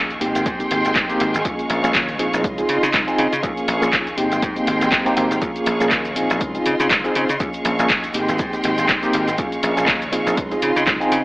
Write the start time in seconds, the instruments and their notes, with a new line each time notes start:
Already playing: slap bass D#2, violin section G#3 F5 C#6
0.10 closed hi-hat, shaker
0.20 slap bass G#1, reed electric piano A#3 C4 D#4 G4, violin section G5 C6, open hi-hat
0.35 slap bass G#1, closed hi-hat, shaker
0.46 slap bass G#2, kick, closed hi-hat, shaker
0.59 reed electric piano A#3 C4 D#4 G4, muted slap bass stroke, closed hi-hat, shaker
0.71 slap bass G#1, open hi-hat
0.85 slap bass G#1, closed hi-hat, shaker
0.95 slap bass G#2, kick, clap, closed hi-hat, shaker
1.09 reed electric piano A#3 C4 D#4 G4, closed hi-hat, shaker
1.20 slap bass G#1, open hi-hat
1.34 slap bass G#1, closed hi-hat, shaker
1.44 slap bass D#2, reed electric piano A#3 C#4 F4 G#4, violin section F5 C#6, kick, closed hi-hat, shaker
1.59 closed hi-hat, shaker
1.70 slap bass A#1, open hi-hat
1.83 slap bass A#1, reed electric piano A#3 C#4 F4 G#4, closed hi-hat, shaker
1.95 slap bass D#2, kick, clap, closed hi-hat, shaker
2.09 closed hi-hat, shaker
2.19 slap bass A#1, reed electric piano C4 D#4 F4 G#4, open hi-hat
2.33 slap bass A#1, closed hi-hat, shaker
2.44 slap bass C#2, violin section F4 D#5 C6, kick, closed hi-hat, shaker
2.58 reed electric piano C4 D#4 F4 G#4, closed hi-hat, shaker
2.69 slap bass C#3, open hi-hat
2.83 slap bass C#3, closed hi-hat, shaker
2.94 slap bass C#2, kick, clap, closed hi-hat, shaker
3.07 reed electric piano C4 D#4 F4 G#4, closed hi-hat, shaker
3.18 slap bass C#3, open hi-hat
3.33 slap bass C#3, closed hi-hat, shaker
3.42 slap bass D#2, reed electric piano A#3 C#4 F4 G#4, violin section G#4 F5 C#6, kick, closed hi-hat, shaker
3.57 closed hi-hat, shaker
3.68 slap bass A#1, open hi-hat
3.81 slap bass A#1, reed electric piano A#3 C#4 F4 G#4, closed hi-hat, shaker
3.93 slap bass D#2, kick, clap, closed hi-hat, shaker
4.07 closed hi-hat, shaker
4.17 slap bass G#1, violin section G#3 G5 C6, reed electric piano A#3 C4 D#4 G4, open hi-hat
4.32 slap bass G#1, closed hi-hat, shaker
4.42 slap bass G#2, kick, closed hi-hat, shaker
4.56 reed electric piano A#3 C4 D#4 G4, muted slap bass stroke, closed hi-hat, shaker
4.67 slap bass G#1, open hi-hat
4.81 slap bass G#1, closed hi-hat, shaker
4.91 reed electric piano A#3 C4 D#4 G4, kick, clap, closed hi-hat, shaker
5.05 reed electric piano A#3 C4 D#4 G4, closed hi-hat, shaker
5.16 slap bass G#1, reed electric piano A#3 C4 D#4 G4, open hi-hat
5.31 slap bass G#1, closed hi-hat, shaker
5.41 slap bass D#2, reed electric piano A#3 C#4 F4 G#4, violin section G#4 F5 C#6, kick, closed hi-hat, maracas, shaker
5.56 closed hi-hat, maracas, shaker
5.66 slap bass A#1, open hi-hat, maracas
5.80 slap bass A#1, reed electric piano A#3 C#4 F4 G#4, closed hi-hat, shaker, maracas
5.91 slap bass D#2, kick, clap, closed hi-hat, maracas, shaker
6.04 closed hi-hat, maracas, shaker
6.15 slap bass A#1, reed electric piano C4 D#4 F4 G#4, open hi-hat, maracas
6.30 slap bass A#1, closed hi-hat, maracas, shaker
6.41 slap bass C#2, violin section F4 D#5 C6, kick, closed hi-hat, maracas, shaker
6.54 reed electric piano C4 D#4 F4 G#4, closed hi-hat, maracas, shaker
6.66 slap bass C#3, open hi-hat, maracas
6.79 slap bass C#3, closed hi-hat, maracas, shaker
6.90 slap bass C#2, kick, clap, closed hi-hat, maracas, shaker
7.04 reed electric piano C4 D#4 F4 G#4, closed hi-hat, maracas, shaker
7.15 slap bass C#3, open hi-hat, maracas
7.29 slap bass C#3, closed hi-hat, maracas, shaker
7.39 slap bass D#2, violin section G#3 F5 C#6, reed electric piano A#3 C#4 F4 G#4, kick, closed hi-hat, maracas, shaker
7.53 closed hi-hat, maracas, shaker
7.65 slap bass A#1, open hi-hat, maracas
7.78 slap bass A#1, reed electric piano A#3 C#4 F4 G#4, closed hi-hat, maracas, shaker
7.89 slap bass D#2, kick, clap, closed hi-hat, maracas, shaker
8.03 closed hi-hat, maracas, shaker
8.14 slap bass G#1, reed electric piano A#3 C4 D#4 G4, violin section G5 C6, open hi-hat, maracas
8.28 slap bass G#1, closed hi-hat, maracas, shaker
8.38 slap bass G#2, kick, closed hi-hat, maracas, shaker
8.53 reed electric piano A#3 C4 D#4 G4, muted slap bass stroke, closed hi-hat, maracas, shaker
8.63 slap bass G#1, open hi-hat, maracas
8.77 slap bass G#1, closed hi-hat, maracas, shaker
8.89 slap bass G#2, kick, clap, closed hi-hat, maracas, shaker
9.02 reed electric piano A#3 C4 D#4 G4, closed hi-hat, shaker, maracas
9.13 slap bass G#1, open hi-hat, maracas
9.28 slap bass G#1, closed hi-hat, maracas, shaker
9.38 slap bass D#2, reed electric piano A#3 C#4 F4 G#4, violin section F5 C#6, kick, closed hi-hat, maracas, shaker
9.52 closed hi-hat, shaker, maracas
9.63 slap bass A#1, open hi-hat, maracas
9.76 slap bass A#1, reed electric piano A#3 C#4 F4 G#4, closed hi-hat, maracas, shaker
9.88 slap bass D#2, kick, clap, closed hi-hat, maracas, shaker
10.02 closed hi-hat, maracas, shaker
10.12 slap bass A#1, reed electric piano C4 D#4 F4 G#4, open hi-hat, maracas
10.26 slap bass A#1, closed hi-hat, maracas, shaker
10.37 slap bass C#2, violin section F4 D#5 C6, kick, closed hi-hat, maracas, shaker
10.51 reed electric piano C4 D#4 F4 G#4, closed hi-hat, maracas, shaker
10.62 slap bass C#3, open hi-hat, maracas
10.76 slap bass C#3, closed hi-hat, maracas, shaker
10.87 slap bass C#2, kick, clap, closed hi-hat, maracas, shaker
11.00 reed electric piano C4 D#4 F4 G#4, closed hi-hat, maracas, shaker
11.12 slap bass C#3, open hi-hat, maracas